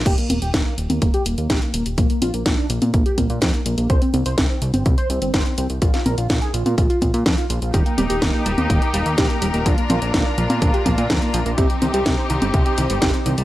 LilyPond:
<<
  \new Staff \with { instrumentName = "String section" } { \time 4/4 \key ees \major \tempo 4 = 125 << { r1 | r1 | r1 | r1 |
bes'1~ | bes'1 | g'1 | } \\ { r1 | r1 | r1 | r1 |
<ees' g'>1 | <d' f'>1 | <c' ees'>1 | } >> }
  \new Staff \with { instrumentName = "Analog synth lead" } { \time 4/4 \key ees \major g'16 bes16 bes16 g'16 bes16 bes16 r16 bes16 bes16 g'16 bes16 bes16 g'16 bes16 bes16 r16 | bes16 bes16 f'16 bes16 bes16 d'16 bes16 bes16 bes16 g'16 bes16 bes16 r16 bes16 bes16 bes16 | c''16 c'16 c'16 c''16 c'16 c'16 r16 c'16 c'16 c''16 c'16 c'16 c''16 c'16 c'16 r16 | f'16 f'16 bes'16 f'16 f'16 aes'16 f'16 f'16 f'16 f'16 f'16 f'16 r16 f'16 f'16 f'16 |
g'16 bes16 bes16 g'16 bes16 bes16 r16 bes16 bes16 g'16 bes16 bes16 g'16 bes16 bes16 r16 | bes16 bes16 f'16 bes16 bes16 d'16 bes16 bes16 bes16 g'16 bes16 bes16 r16 bes16 bes16 bes16 | g'16 c'16 c'16 g'16 c'16 c'16 r16 c'16 c'16 g'16 c'16 c'16 g'16 c'16 c'16 r16 | }
  \new Staff \with { instrumentName = "Clean electric guitar" } { \clef bass \time 4/4 \key ees \major r1 | r1 | r1 | r1 |
ees16 r16 g16 bes16 ees16 r16 g16 bes16 ees16 r16 g16 bes16 ees16 r16 g16 bes16 | d16 r16 f16 bes16 d16 r16 f16 bes16 d16 r16 f16 bes16 d16 r16 f16 bes16 | c16 r16 ees16 g16 c16 r16 ees16 g16 c16 r16 ees16 g16 c16 r16 ees16 g16 | }
  \new Staff \with { instrumentName = "Analog synth bass" } { \clef bass \time 4/4 \key ees \major ees,,16 r16 ees,,16 ees,,16 ees,,16 r16 ees,,16 ees,16 ees,,16 r16 ees,,16 ees,16 bes,,16 r16 ees,,16 ees,,16 | bes,,16 r16 bes,,16 bes,,16 bes,,16 r16 bes,,16 bes,16 bes,,16 r16 bes,,16 bes,16 f,16 r16 bes,,16 bes,,16 | c,16 r16 c,16 c,16 c,16 r16 c,16 g,,16 c,16 r16 c,16 g,,16 g,,16 r16 c,16 c,16 | bes,,16 r16 bes,,16 bes,,16 bes,,16 r16 bes,,16 bes,16 bes,,16 r16 bes,,16 bes,16 f,16 r16 bes,,16 bes,,16 |
ees,,16 r16 ees,,16 ees,,16 ees,,16 r16 ees,,16 ees,16 ees,,16 r16 ees,,16 ees,16 bes,,16 r16 ees,,16 ees,,16 | bes,,16 r16 bes,,16 bes,,16 bes,,16 r16 bes,,16 bes,16 bes,,16 r16 bes,,16 bes,16 f,16 r16 bes,,16 bes,,16 | c,16 r16 c,16 c,16 c,16 r16 c,16 g,,16 c,16 r16 c,16 g,,16 g,,16 r16 c,16 c,16 | }
  \new DrumStaff \with { instrumentName = "Drums" } \drummode { \time 4/4 <cymc hh bd>16 hh16 <cgho hh>16 hh16 <hh bd sn>8 hh16 <cgho hh>16 <hh bd>16 hh16 hh16 hh16 <hh bd sn>16 hh16 hh16 hh16 | <hh bd>16 hh16 <cgho hh>16 hh16 <hh bd sn>8 hh16 <cgho hh>16 <hh bd>16 hh16 <cgho hh bd>16 hh16 <hh bd sn>16 hh16 hh16 hh16 | <hh bd>16 hh16 <cgho hh>16 hh16 <hh bd sn>8 hh16 <cgho hh>16 <hh bd>16 hh16 hh16 hh16 <hh bd sn>16 hh16 hh16 hh16 | <hh bd>16 <hh sn>16 <cgho hh>16 hh16 <hh bd sn>16 hh16 hh16 <cgho hh>16 <hh bd>16 hh16 <cgho hh bd>16 hh16 <hh bd sn>16 hh16 hh16 hh16 |
<hh bd>16 hh16 <cgho hh>16 hh16 <hh bd sn>8 hh16 <cgho hh>16 <hh bd>16 hh16 hh16 hh16 <hh bd sn>16 hh16 hh16 hh16 | <hh bd>16 hh16 <cgho hh>16 hh16 <hh bd sn>8 hh16 <cgho hh>16 <hh bd>16 hh16 <cgho hh bd>16 hh16 <hh bd sn>16 hh16 hh16 hh16 | <hh bd>16 hh16 <cgho hh>16 hh16 <hh bd sn>8 hh16 <cgho hh>16 <hh bd>16 hh16 hh16 hh16 <hh bd sn>16 hh16 hh16 hh16 | }
>>